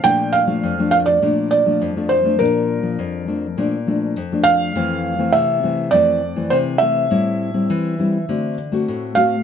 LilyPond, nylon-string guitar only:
\new Staff \with { instrumentName = "Nylon-string guitar" } { \time 4/4 \key bes \major \tempo 4 = 102 << { <f a d'>8. <f a d'>8 <f a d'>8. <f a d'>8. <f a d'>8 <f a d'>8 <f a d'>16 | <f d'>8. <f d'>8. <f a d'>16 r16 <f a d'>16 r16 <f a d'>8 r16 <f a d'>8. | \key f \major <e a c'>8. <e a c'>8. <e a c'>8 <e a c'>8 r16 <e a c'>8. <e a c'>8 | <g c' e'>8. <g c' e'>8. <g c' e'>16 r16 <a c' fis'>8 r16 <a c' fis'>8. <a c' fis'>16 r16 | } \\ { bes,4 f,4 bes,4 f,4 | bes,4 f,4 bes,4 f,4 | f,4 c4 f,4 c4 | a,4 e4 d4 a,4 | } >> }